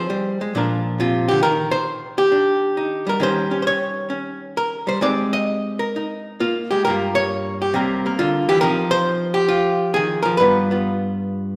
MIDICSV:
0, 0, Header, 1, 2, 480
1, 0, Start_track
1, 0, Tempo, 444444
1, 1552, Time_signature, 4, 2, 24, 8
1, 3461, Tempo, 456969
1, 6821, Tempo, 446097
1, 12369, End_track
2, 0, Start_track
2, 0, Title_t, "Hollow-body jazz guitar"
2, 0, Program_c, 0, 26
2, 0, Note_on_c, 0, 60, 44
2, 0, Note_on_c, 0, 63, 38
2, 0, Note_on_c, 0, 72, 83
2, 105, Note_on_c, 0, 55, 57
2, 436, Note_off_c, 0, 55, 0
2, 443, Note_on_c, 0, 56, 58
2, 580, Note_off_c, 0, 60, 0
2, 580, Note_off_c, 0, 63, 0
2, 584, Note_off_c, 0, 72, 0
2, 592, Note_on_c, 0, 46, 75
2, 595, Note_off_c, 0, 56, 0
2, 603, Note_on_c, 0, 53, 46
2, 612, Note_on_c, 0, 62, 46
2, 617, Note_on_c, 0, 65, 42
2, 623, Note_on_c, 0, 70, 48
2, 1067, Note_off_c, 0, 65, 0
2, 1077, Note_on_c, 0, 48, 65
2, 1085, Note_on_c, 0, 65, 70
2, 1383, Note_off_c, 0, 70, 0
2, 1387, Note_on_c, 0, 67, 90
2, 1401, Note_off_c, 0, 48, 0
2, 1416, Note_on_c, 0, 50, 61
2, 1534, Note_off_c, 0, 46, 0
2, 1536, Note_off_c, 0, 67, 0
2, 1541, Note_on_c, 0, 70, 103
2, 1544, Note_off_c, 0, 62, 0
2, 1555, Note_off_c, 0, 50, 0
2, 1556, Note_off_c, 0, 65, 0
2, 1557, Note_off_c, 0, 53, 0
2, 1559, Note_on_c, 0, 51, 68
2, 1714, Note_off_c, 0, 70, 0
2, 1852, Note_on_c, 0, 72, 104
2, 2335, Note_off_c, 0, 72, 0
2, 2354, Note_on_c, 0, 67, 89
2, 2503, Note_on_c, 0, 62, 46
2, 2993, Note_on_c, 0, 63, 48
2, 3309, Note_off_c, 0, 67, 0
2, 3311, Note_on_c, 0, 55, 62
2, 3340, Note_on_c, 0, 70, 82
2, 3440, Note_off_c, 0, 51, 0
2, 3444, Note_off_c, 0, 62, 0
2, 3453, Note_on_c, 0, 51, 63
2, 3460, Note_off_c, 0, 55, 0
2, 3464, Note_on_c, 0, 55, 42
2, 3469, Note_on_c, 0, 61, 50
2, 3475, Note_off_c, 0, 63, 0
2, 3479, Note_off_c, 0, 70, 0
2, 3480, Note_on_c, 0, 67, 42
2, 3488, Note_on_c, 0, 72, 90
2, 3769, Note_off_c, 0, 61, 0
2, 3782, Note_off_c, 0, 67, 0
2, 3782, Note_on_c, 0, 61, 41
2, 3786, Note_on_c, 0, 67, 43
2, 3888, Note_off_c, 0, 72, 0
2, 3901, Note_on_c, 0, 72, 59
2, 3941, Note_off_c, 0, 72, 0
2, 3949, Note_on_c, 0, 73, 86
2, 4386, Note_off_c, 0, 61, 0
2, 4399, Note_on_c, 0, 61, 43
2, 4893, Note_off_c, 0, 73, 0
2, 4897, Note_on_c, 0, 70, 80
2, 5205, Note_off_c, 0, 55, 0
2, 5209, Note_on_c, 0, 55, 53
2, 5221, Note_off_c, 0, 70, 0
2, 5226, Note_on_c, 0, 72, 78
2, 5354, Note_off_c, 0, 61, 0
2, 5355, Note_off_c, 0, 51, 0
2, 5359, Note_on_c, 0, 56, 61
2, 5363, Note_off_c, 0, 55, 0
2, 5367, Note_on_c, 0, 60, 48
2, 5368, Note_off_c, 0, 72, 0
2, 5372, Note_on_c, 0, 74, 91
2, 5374, Note_on_c, 0, 63, 46
2, 5379, Note_off_c, 0, 67, 0
2, 5383, Note_on_c, 0, 67, 40
2, 5689, Note_off_c, 0, 74, 0
2, 5694, Note_on_c, 0, 75, 93
2, 6176, Note_off_c, 0, 67, 0
2, 6180, Note_on_c, 0, 70, 75
2, 6341, Note_off_c, 0, 63, 0
2, 6355, Note_on_c, 0, 63, 45
2, 6663, Note_off_c, 0, 75, 0
2, 6815, Note_off_c, 0, 60, 0
2, 6817, Note_off_c, 0, 70, 0
2, 6819, Note_off_c, 0, 63, 0
2, 6820, Note_on_c, 0, 58, 60
2, 6823, Note_on_c, 0, 65, 62
2, 6991, Note_off_c, 0, 65, 0
2, 7146, Note_on_c, 0, 67, 80
2, 7147, Note_off_c, 0, 58, 0
2, 7148, Note_off_c, 0, 56, 0
2, 7161, Note_on_c, 0, 56, 58
2, 7293, Note_off_c, 0, 67, 0
2, 7297, Note_on_c, 0, 70, 94
2, 7309, Note_off_c, 0, 56, 0
2, 7322, Note_on_c, 0, 43, 65
2, 7331, Note_on_c, 0, 55, 50
2, 7338, Note_on_c, 0, 58, 47
2, 7353, Note_on_c, 0, 65, 46
2, 7621, Note_off_c, 0, 70, 0
2, 7625, Note_on_c, 0, 73, 106
2, 8106, Note_off_c, 0, 73, 0
2, 8126, Note_on_c, 0, 67, 73
2, 8251, Note_off_c, 0, 55, 0
2, 8255, Note_on_c, 0, 48, 67
2, 8261, Note_off_c, 0, 58, 0
2, 8264, Note_on_c, 0, 55, 46
2, 8269, Note_off_c, 0, 65, 0
2, 8271, Note_off_c, 0, 67, 0
2, 8272, Note_off_c, 0, 43, 0
2, 8273, Note_on_c, 0, 58, 51
2, 8279, Note_on_c, 0, 70, 47
2, 8588, Note_off_c, 0, 58, 0
2, 8595, Note_off_c, 0, 70, 0
2, 8601, Note_on_c, 0, 58, 40
2, 8609, Note_on_c, 0, 70, 42
2, 8739, Note_off_c, 0, 48, 0
2, 8742, Note_on_c, 0, 65, 92
2, 8753, Note_on_c, 0, 50, 58
2, 9059, Note_off_c, 0, 70, 0
2, 9063, Note_on_c, 0, 67, 96
2, 9065, Note_off_c, 0, 50, 0
2, 9067, Note_off_c, 0, 65, 0
2, 9069, Note_on_c, 0, 52, 64
2, 9189, Note_off_c, 0, 67, 0
2, 9193, Note_on_c, 0, 70, 110
2, 9204, Note_off_c, 0, 55, 0
2, 9210, Note_off_c, 0, 58, 0
2, 9210, Note_on_c, 0, 53, 75
2, 9215, Note_on_c, 0, 60, 48
2, 9222, Note_off_c, 0, 52, 0
2, 9227, Note_on_c, 0, 63, 48
2, 9365, Note_off_c, 0, 70, 0
2, 9516, Note_on_c, 0, 72, 106
2, 9976, Note_off_c, 0, 72, 0
2, 9980, Note_on_c, 0, 67, 90
2, 10132, Note_off_c, 0, 63, 0
2, 10136, Note_on_c, 0, 65, 86
2, 10621, Note_off_c, 0, 67, 0
2, 10625, Note_on_c, 0, 68, 90
2, 10650, Note_on_c, 0, 51, 62
2, 10929, Note_off_c, 0, 68, 0
2, 10933, Note_on_c, 0, 70, 87
2, 10960, Note_off_c, 0, 53, 0
2, 10964, Note_on_c, 0, 53, 65
2, 10974, Note_off_c, 0, 51, 0
2, 11088, Note_off_c, 0, 70, 0
2, 11092, Note_on_c, 0, 71, 87
2, 11107, Note_off_c, 0, 60, 0
2, 11108, Note_off_c, 0, 65, 0
2, 11119, Note_off_c, 0, 53, 0
2, 11119, Note_on_c, 0, 43, 66
2, 11124, Note_on_c, 0, 55, 47
2, 11134, Note_on_c, 0, 59, 46
2, 11140, Note_on_c, 0, 65, 45
2, 11442, Note_off_c, 0, 59, 0
2, 11455, Note_off_c, 0, 65, 0
2, 11455, Note_on_c, 0, 59, 43
2, 11466, Note_on_c, 0, 65, 43
2, 12369, Note_off_c, 0, 43, 0
2, 12369, Note_off_c, 0, 55, 0
2, 12369, Note_off_c, 0, 59, 0
2, 12369, Note_off_c, 0, 65, 0
2, 12369, Note_off_c, 0, 71, 0
2, 12369, End_track
0, 0, End_of_file